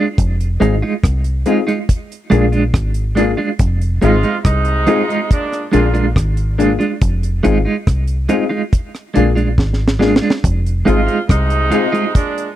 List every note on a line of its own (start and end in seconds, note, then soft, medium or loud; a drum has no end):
0.18 0.58 F1 loud
0.18 kick loud
0.18 closed hi-hat medium
0.40 closed hi-hat medium
0.60 0.81 G#1 medium
0.60 0.74 G#3 medium
0.60 0.73 C4 medium
0.60 0.74 D#4 medium
0.60 0.74 F4 medium
0.60 0.74 G#4 loud
0.60 closed hi-hat medium
0.82 0.93 G#3 medium
0.82 0.93 D#4 medium
0.82 0.93 F4 medium
1.04 1.44 C2 medium
1.04 kick loud
1.04 cross-stick loud
1.04 closed hi-hat medium
1.24 closed hi-hat medium
1.46 1.60 G#3 medium
1.46 1.59 C4 medium
1.46 1.59 D#4 medium
1.46 1.60 D#4 medium
1.46 1.60 F4 medium
1.46 1.60 G#4 loud
1.46 closed hi-hat medium
1.67 1.78 G#3 medium
1.67 1.78 D#4 medium
1.67 1.78 F4 medium
1.67 1.76 F4 soft
1.67 1.76 G#4 soft
1.67 closed hi-hat soft
1.89 kick loud
1.89 closed hi-hat medium
2.12 closed hi-hat medium
2.30 2.72 A#1 medium
2.30 2.44 G#3 medium
2.30 2.45 A#3 loud
2.30 2.45 D4 medium
2.30 2.45 F4 medium
2.30 2.45 G#4 loud
2.30 closed hi-hat medium
2.52 2.64 G#3 soft
2.52 2.63 D4 medium
2.52 2.63 F4 medium
2.52 closed hi-hat soft
2.74 3.35 G#1 medium
2.74 kick loud
2.74 cross-stick loud
2.74 closed hi-hat medium
2.94 closed hi-hat medium
3.15 3.30 G#3 medium
3.15 3.30 A#3 medium
3.15 3.30 D4 medium
3.15 3.30 F4 medium
3.15 3.31 G#4 loud
3.15 closed hi-hat medium
3.37 3.49 G#3 soft
3.37 3.49 D4 medium
3.37 3.48 F4 medium
3.59 4.00 F1 loud
3.59 kick loud
3.59 closed hi-hat medium
3.81 closed hi-hat medium
4.02 4.23 G#1 medium
4.02 4.37 C3 medium
4.02 4.16 G#3 medium
4.02 4.36 G#3 medium
4.02 4.15 C4 medium
4.02 4.16 D#4 medium
4.02 4.36 F4 loud
4.02 4.16 F4 medium
4.02 4.16 G#4 medium
4.02 closed hi-hat medium
4.23 4.35 G#3 soft
4.23 4.34 D#4 medium
4.23 4.34 F4 medium
4.23 closed hi-hat soft
4.45 4.86 C2 medium
4.45 5.27 C3 loud
4.45 5.26 G#3 loud
4.45 5.27 D#4 loud
4.45 kick loud
4.45 cross-stick loud
4.45 closed hi-hat medium
4.65 closed hi-hat soft
4.87 5.01 G#3 medium
4.87 5.01 C4 medium
4.87 5.01 D#4 medium
4.87 5.01 F4 medium
4.87 5.02 F4 medium
4.87 5.02 G#4 medium
4.87 closed hi-hat medium
5.09 5.20 G#3 medium
5.09 5.20 D#4 medium
5.09 5.20 F4 medium
5.09 5.18 F4 soft
5.09 5.18 G#4 soft
5.09 closed hi-hat soft
5.31 5.65 A#2 medium
5.31 5.65 G#3 medium
5.31 5.65 D4 loud
5.31 kick loud
5.31 closed hi-hat medium
5.53 cross-stick medium
5.53 closed hi-hat medium
5.72 6.14 A#1 medium
5.72 6.07 D3 medium
5.72 5.86 G#3 medium
5.72 5.86 A#3 loud
5.72 6.07 A#3 medium
5.72 5.87 D4 medium
5.72 5.86 D4 medium
5.72 5.87 F4 medium
5.72 6.07 F4 medium
5.72 5.87 F4 medium
5.72 5.87 G#4 loud
5.72 closed hi-hat medium
5.94 6.05 G#3 medium
5.94 6.05 D4 medium
5.94 6.05 F4 medium
5.94 closed hi-hat soft
6.16 6.77 G#1 medium
6.16 kick loud
6.16 cross-stick loud
6.16 closed hi-hat medium
6.37 closed hi-hat medium
6.58 6.72 G#3 medium
6.58 6.72 A#3 medium
6.58 6.72 D4 medium
6.58 6.73 D4 medium
6.58 6.72 F4 medium
6.58 6.73 F4 medium
6.58 6.72 G#4 medium
6.58 closed hi-hat medium
6.79 6.91 G#3 soft
6.79 6.90 D4 soft
6.79 6.90 F4 medium
6.79 closed hi-hat soft
7.01 7.42 F1 loud
7.01 kick loud
7.01 closed hi-hat medium
7.23 closed hi-hat medium
7.43 7.65 G#1 medium
7.43 7.57 G#3 medium
7.43 7.57 C4 medium
7.43 7.58 D#4 medium
7.43 7.58 F4 medium
7.43 7.58 G#4 medium
7.43 closed hi-hat medium
7.65 7.77 G#3 soft
7.65 7.76 D#4 soft
7.65 7.76 F4 medium
7.87 8.28 C2 medium
7.87 kick loud
7.87 cross-stick loud
7.87 closed hi-hat medium
8.07 closed hi-hat medium
8.29 8.43 G#3 medium
8.29 8.43 C4 medium
8.29 8.43 D#4 medium
8.29 8.43 F4 medium
8.29 8.44 F4 medium
8.29 8.44 G#4 medium
8.29 closed hi-hat medium
8.49 8.62 G#3 medium
8.49 8.61 D#4 medium
8.49 8.61 F4 medium
8.49 8.60 F4 soft
8.49 8.60 G#4 soft
8.73 kick loud
8.73 closed hi-hat medium
8.95 cross-stick medium
8.95 closed hi-hat soft
9.14 9.56 A#1 medium
9.14 9.28 G#3 medium
9.14 9.29 A#3 loud
9.14 9.29 D4 medium
9.14 9.29 F4 medium
9.14 9.29 G#4 loud
9.14 closed hi-hat medium
9.35 9.47 G#3 soft
9.35 9.47 D4 soft
9.35 9.47 F4 medium
9.35 closed hi-hat soft
9.58 10.19 G#1 medium
9.58 kick medium
9.58 snare medium
9.73 snare soft
9.88 snare medium
9.99 10.14 G#3 medium
9.99 10.14 A#3 medium
9.99 10.14 D4 medium
9.99 10.14 F4 medium
9.99 10.15 G#4 medium
9.99 snare medium
10.16 snare medium
10.21 10.33 G#3 soft
10.21 10.33 D4 medium
10.21 10.32 F4 medium
10.30 snare medium
10.44 10.84 F1 loud
10.44 kick loud
10.44 closed hi-hat medium
10.66 closed hi-hat medium
10.85 11.07 G#1 medium
10.85 11.21 C3 medium
10.85 11.00 G#3 medium
10.85 11.21 G#3 medium
10.85 11.00 C4 medium
10.85 11.00 D#4 medium
10.85 11.21 F4 medium
10.85 11.00 F4 medium
10.85 11.00 G#4 medium
10.85 closed hi-hat medium
11.07 11.19 G#3 medium
11.07 11.18 D#4 medium
11.07 11.18 F4 medium
11.07 closed hi-hat soft
11.29 11.70 C2 medium
11.29 12.11 C3 loud
11.29 12.11 G#3 loud
11.29 12.11 D#4 loud
11.29 kick loud
11.29 cross-stick loud
11.29 closed hi-hat medium
11.50 closed hi-hat medium
11.71 11.85 G#3 medium
11.71 11.86 C4 medium
11.71 11.85 D#4 medium
11.71 11.86 D#4 medium
11.71 11.85 F4 medium
11.71 11.86 F4 medium
11.71 11.86 G#4 loud
11.71 closed hi-hat medium
11.92 12.04 G#3 medium
11.92 12.04 D#4 medium
11.92 12.04 F4 medium
11.92 12.02 F4 soft
11.92 12.03 G#4 soft
11.92 closed hi-hat soft
12.14 12.49 A#2 medium
12.14 12.49 G#3 medium
12.14 12.49 D4 medium
12.14 kick loud
12.14 closed hi-hat medium
12.38 closed hi-hat soft